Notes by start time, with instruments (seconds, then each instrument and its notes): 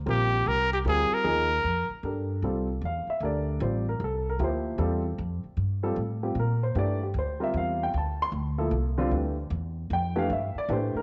0.06 upright bass A#1, upright piano G3 C4 F4 A#4, trumpet G4
0.46 upright bass C2, trumpet A#4
0.73 trumpet G4
0.85 upright bass D2, upright piano G3 C4 F4 A#4, trumpet G#4
1.10 trumpet A#4, muted upright bass stroke
1.24 upright bass D#2, upright piano F3 A#3 D#4 G#4
1.64 upright bass F2
1.89 muted upright bass stroke
2.03 upright bass G2, upright piano D4 G4 A4 A#4
2.42 upright bass C2, upright piano G3 C4 F4 A4
2.81 upright bass E2, upright piano F5
3.07 upright piano E5, muted upright bass stroke
3.20 upright bass D2, upright piano D4 G4 A4 A#4
3.25 upright piano D5
3.60 upright bass A1, upright piano G3 C4 F4 C5
3.89 upright piano A#4
4.00 upright bass C2
4.04 upright piano A4
4.30 upright piano A#4
4.39 upright bass D2, upright piano F3 A#3 E4 G4
4.44 upright piano C5
4.78 upright bass E2, upright piano G3 C4 F4 A4
5.18 upright bass F2
5.44 muted upright bass stroke
5.57 upright bass G2
5.83 upright piano G3 C4 F4 A4
5.96 upright bass A2
6.23 upright piano G3 C4 F4 G4
6.35 upright bass A#2
6.39 upright piano A#4
6.63 upright piano C5
6.75 upright bass G2, upright piano E3 A3 D4 G4 D5
7.03 upright piano G4
7.14 upright bass D2
7.19 upright piano C5
7.40 upright piano G3 C4 F4 A#4 E5
7.54 upright bass E2, upright piano F5
7.83 upright piano G5
7.94 upright bass D2, upright piano A5
8.22 upright piano C6
8.32 upright bass D2
8.58 upright piano F3 A#3 E4 A4
8.71 upright bass C2
8.98 upright piano D3 G3 C4 F4
9.11 upright bass D2, upright piano E3 A3 D4
9.50 upright bass E2
9.90 upright bass F2, upright piano G5
10.16 upright piano E3 A3 D4 G4 F5
10.30 upright bass G2, upright piano E5
10.55 upright piano D5, muted upright bass stroke
10.69 upright bass A2, upright piano E3 A3 D4 G4 C5
10.95 upright piano A#4, muted upright bass stroke